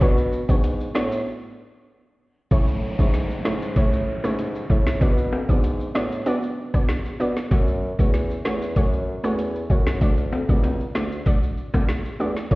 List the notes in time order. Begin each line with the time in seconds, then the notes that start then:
0.01 B2 B3 D4 F#4 C#5, kick, closed hi-hat, maracas
0.17 maracas
0.32 maracas
0.49 G#2 B3 D4 F#4 C#5, kick, maracas
0.63 closed hi-hat, maracas
0.80 maracas
0.95 A2 B3 D4 F#4 C#5, snare, maracas
1.12 maracas
2.51 A2 A3 C#4 E4 C#5, kick, closed hi-hat, downlifter, maracas
2.67 maracas
2.99 G#2 A3 C#4 E4 C#5, kick, maracas
3.13 snare, closed hi-hat, maracas
3.30 maracas
3.45 G#2 A3 C#4 E4 C#5, snare
3.62 maracas
3.76 A2 A3 C#4 E4 C#5, kick, closed hi-hat, maracas
3.93 maracas
4.24 G#2 A3 C#4 E4 C#5, cross-stick, maracas
4.39 closed hi-hat, maracas
4.55 maracas
4.70 A2 A3 C#4 E4 C#5, kick, maracas
4.86 snare, maracas
5.01 B2 B3 D4 F#4 D5, kick, closed hi-hat, maracas
5.17 maracas
5.33 high timbale
5.49 G#2 B3 D4 F#4 D5, kick, maracas
5.63 closed hi-hat, maracas
5.80 maracas
5.95 A2 B3 D4 F#4 D5, snare
6.12 maracas
6.26 B3 D4 F#4 D5, closed hi-hat, maracas
6.43 maracas
6.74 B3 D4 F#4 D5, kick, cross-stick, maracas
6.89 snare, closed hi-hat, maracas
7.05 maracas
7.20 B2 B3 D4 F#4 D5, maracas
7.37 snare, maracas
7.51 F#2 A3 C#4 F#4 C#5, kick, closed hi-hat, maracas
7.68 maracas
7.99 E2 A3 C#4 F#4 C#5, kick, maracas
8.14 snare, closed hi-hat, maracas
8.30 maracas
8.45 E2 A3 C#4 F#4 C#5, snare
8.62 maracas
8.76 F#2 A3 C#4 F#4 C#5, kick, closed hi-hat, maracas
8.93 maracas
9.24 E2 A3 C#4 F#4 C#5, cross-stick, maracas
9.39 closed hi-hat, maracas
9.55 maracas
9.70 F#2 A3 C#4 F#4 C#5, kick, maracas
9.86 snare, maracas
10.01 D2 A3 D4 F#4 D5, kick, closed hi-hat, maracas
10.17 maracas
10.33 high timbale, maracas
10.49 C#2 A3 D4 F#4 D5, kick, maracas
10.63 closed hi-hat, high timbale, maracas
10.80 maracas
10.95 D2 A3 D4 F#4 D5, snare, maracas
11.12 maracas
11.26 A3 D4 F#4 D5, kick, closed hi-hat, maracas
11.43 maracas
11.57 maracas
11.74 A3 D4 F#4 D5, kick, cross-stick, high timbale, maracas
11.89 snare, closed hi-hat, maracas
12.05 maracas
12.20 E2 A3 D4 F#4 D5, maracas
12.36 snare, maracas
12.51 A2 A3 C#4 E4 C#5, kick, closed hi-hat, maracas